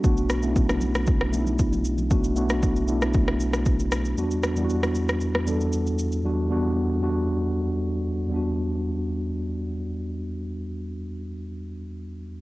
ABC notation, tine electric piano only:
X:1
M:4/4
L:1/16
Q:1/4=116
K:Bphr
V:1 name="Tine electric piano"
[A,B,DF]2 z [A,B,^CDE]6 z [A,B,D^DE]4- [A,B,=D^DE] z | [A,B,DF]2 [A,B,DF]3 z [A,B,DE]6 z4 | [E,,G,B,DF]2 z [E,,G,B,DEF]6 z [E,,G,B,DA]4- [E,,G,B,DA] z | [E,,G,B,DF]2 [E,,G,B,DF]3 z [E,,G,B,DF]6 z4 |
[E,,G,B,DF]16- | [E,,G,B,DF]16 |]